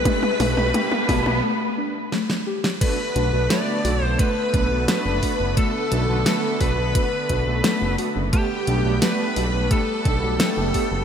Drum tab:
CC |----------------|x---------------|----------------|----------------|
HH |x-o-x-o---------|x-x-x-o-x-x-x-o-|x-x-x-o-x-x-x-o-|x-x-x-o-x-x-x-o-|
SD |------------oo-o|----o-------o---|----o-------o---|----o-------o---|
T2 |oooooooo--------|----------------|----------------|----------------|
BD |o-----o---------|o-------o-o---o-|o-----o-o-o-----|o-------o-o---o-|